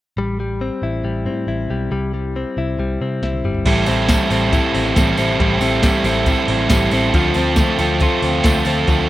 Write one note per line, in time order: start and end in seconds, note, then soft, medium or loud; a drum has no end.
0.17 0.69 A1 medium
0.17 0.39 G3 medium
0.40 1.04 G3 medium
0.61 1.26 C4 medium
0.82 1.00 A1 medium
0.82 1.48 E4 medium
1.04 1.27 A1 medium
1.04 1.70 G3 medium
1.25 1.44 A2 medium
1.25 2.36 C4 soft
1.47 1.65 A1 medium
1.47 2.58 E4 medium
1.69 1.88 B1 medium
1.69 1.91 G3 soft
1.91 2.43 C2 medium
1.91 2.13 G3 medium
2.36 3.01 C4 medium
2.57 2.75 C2 medium
2.57 3.23 E4 medium
2.78 2.96 C2 medium
2.78 3.45 G3 medium
3.01 3.19 C3 medium
3.01 3.88 C4 medium
3.22 3.40 C2 medium
3.22 4.52 E4 medium
3.22 snare medium
3.33 high tom medium
3.44 3.62 G1 medium
3.44 3.66 G3 medium
3.44 mid tom medium
3.54 floor tom medium
3.66 3.84 A1 loud
3.66 3.88 A2 medium
3.66 3.88 E3 medium
3.66 3.88 G3 medium
3.66 3.87 C4 medium
3.66 3.87 E4 medium
3.66 3.86 A4 medium
3.66 kick loud
3.66 closed hi-hat medium
3.66 crash medium
3.66 tambourine soft
3.86 4.14 A1 loud
3.86 4.08 G3 soft
3.86 4.08 C4 soft
3.86 4.08 E4 medium
3.86 4.08 A4 medium
3.86 open hi-hat medium
3.86 tambourine medium
4.08 4.30 A2 medium
4.08 4.31 E3 medium
4.08 4.31 G3 medium
4.08 4.31 C4 medium
4.08 4.30 E4 medium
4.08 4.29 A4 medium
4.08 kick loud
4.08 snare loud
4.08 closed hi-hat medium
4.08 tambourine medium
4.30 4.58 A1 medium
4.30 4.50 G3 soft
4.30 4.52 C4 soft
4.30 4.52 E4 medium
4.30 4.52 A4 medium
4.30 open hi-hat medium
4.30 tambourine soft
4.51 4.95 G3 medium
4.51 4.96 C4 medium
4.51 4.95 E4 medium
4.51 4.96 A4 medium
4.51 kick loud
4.51 closed hi-hat medium
4.51 tambourine medium
4.74 4.92 A1 medium
4.74 5.18 C4 medium
4.74 open hi-hat medium
4.74 tambourine soft
4.95 5.14 A1 loud
4.95 5.17 A2 medium
4.95 5.18 E3 medium
4.95 5.18 G3 medium
4.95 5.17 C4 medium
4.95 5.17 E4 medium
4.95 5.16 A4 medium
4.95 kick loud
4.95 snare loud
4.95 closed hi-hat medium
4.95 tambourine medium
5.17 5.35 A1 medium
5.17 5.38 G3 soft
5.17 5.39 C4 soft
5.17 5.39 E4 medium
5.17 5.39 A4 medium
5.17 open hi-hat medium
5.17 tambourine soft
5.39 5.57 A1 loud
5.39 5.61 A2 medium
5.39 5.61 E3 medium
5.39 5.61 G3 medium
5.39 5.62 C4 medium
5.39 5.60 E4 medium
5.39 5.60 A4 medium
5.39 kick medium
5.39 closed hi-hat medium
5.61 5.88 A1 loud
5.61 5.82 G3 soft
5.61 5.82 C4 soft
5.61 5.83 E4 soft
5.61 5.83 A4 medium
5.61 open hi-hat medium
5.61 tambourine medium
5.82 6.05 A2 medium
5.82 6.05 E3 medium
5.82 6.05 G3 medium
5.82 6.05 C4 medium
5.82 6.05 E4 medium
5.82 6.04 A4 medium
5.82 kick loud
5.82 snare loud
5.82 closed hi-hat medium
5.82 tambourine medium
6.04 6.31 A1 loud
6.04 6.26 G3 soft
6.04 6.27 C4 medium
6.04 6.27 E4 medium
6.04 6.27 A4 medium
6.04 open hi-hat medium
6.04 tambourine medium
6.26 6.70 G3 medium
6.26 6.71 C4 medium
6.26 6.71 E4 medium
6.26 6.72 A4 medium
6.26 kick loud
6.26 closed hi-hat medium
6.26 tambourine medium
6.48 6.66 A1 medium
6.48 6.93 C4 medium
6.48 open hi-hat medium
6.69 6.88 A1 medium
6.69 6.92 A2 medium
6.69 6.92 E3 medium
6.69 6.93 G3 medium
6.69 6.92 C4 medium
6.69 6.91 E4 medium
6.69 6.91 A4 medium
6.69 kick loud
6.69 snare loud
6.69 closed hi-hat medium
6.69 tambourine medium
6.91 7.10 A1 medium
6.91 7.14 G3 soft
6.91 7.13 C4 medium
6.91 7.14 E4 soft
6.91 7.14 A4 medium
6.91 open hi-hat medium
6.91 tambourine medium
7.14 7.32 D2 loud
7.14 7.36 D3 medium
7.14 8.87 F3 medium
7.14 7.36 A3 medium
7.14 7.36 C4 medium
7.14 7.35 F4 medium
7.14 7.34 A4 medium
7.14 kick loud
7.14 closed hi-hat medium
7.14 tambourine soft
7.34 7.62 D2 loud
7.34 7.57 C4 soft
7.34 7.58 F4 soft
7.34 7.57 A4 medium
7.34 open hi-hat medium
7.34 tambourine medium
7.56 7.79 D3 medium
7.56 7.79 A3 medium
7.56 7.80 C4 medium
7.56 7.79 F4 medium
7.56 7.78 A4 medium
7.56 kick loud
7.56 snare loud
7.56 closed hi-hat medium
7.56 tambourine medium
7.78 8.06 D2 loud
7.78 8.00 C4 soft
7.78 8.01 F4 medium
7.78 8.01 A4 medium
7.78 open hi-hat medium
7.78 tambourine medium
8.00 8.44 A3 medium
8.00 8.45 C4 medium
8.00 8.44 F4 medium
8.00 8.45 A4 medium
8.00 kick loud
8.00 closed hi-hat medium
8.00 tambourine medium
8.22 8.40 D2 loud
8.22 8.67 C4 medium
8.22 open hi-hat medium
8.22 tambourine soft
8.44 8.62 D2 medium
8.44 8.66 D3 medium
8.44 8.66 A3 medium
8.44 8.66 C4 medium
8.44 8.65 F4 medium
8.44 8.64 A4 medium
8.44 kick loud
8.44 snare loud
8.44 closed hi-hat medium
8.44 tambourine medium
8.65 8.83 D2 medium
8.65 8.88 C4 soft
8.65 8.88 F4 medium
8.65 8.87 A4 medium
8.65 open hi-hat medium
8.65 tambourine medium
8.88 9.05 D2 loud
8.88 9.09 D3 medium
8.88 9.09 F3 medium
8.88 9.09 A3 medium
8.88 9.09 C4 medium
8.88 9.09 F4 medium
8.88 9.09 A4 medium
8.88 kick loud
8.88 closed hi-hat medium
8.88 tambourine soft